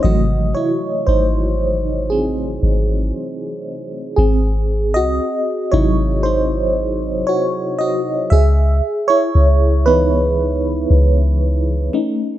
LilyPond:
<<
  \new Staff \with { instrumentName = "FM electric piano" } { \time 4/4 \key gis \phrygian \tempo 4 = 58 <fis' dis''>8 <e' cis''>8 <dis' bis'>4 <bis gis'>4. r8 | <bis gis'>8. <fis' dis''>8. <e' cis''>8 <dis' bis'>4 <fis' cis''>8 <fis' dis''>8 | <gis' e''>8. <e' cis''>8. <dis' b'>4 r4. | }
  \new Staff \with { instrumentName = "FM electric piano" } { \time 4/4 \key gis \phrygian <bis, e fis a>1 | r4. <bis, fis dis'>4. r4 | r4. <e b dis'>2 <a cis' dis'>8 | }
  \new Staff \with { instrumentName = "808-style bass" } { \clef bass \time 4/4 \key gis \phrygian gis,,8 r8 gis,,4. gis,,8 r4 | gis,,8. bis,,16 r8 gis,,4. r4 | cis,8 r8 cis,4. cis,4 r8 | }
>>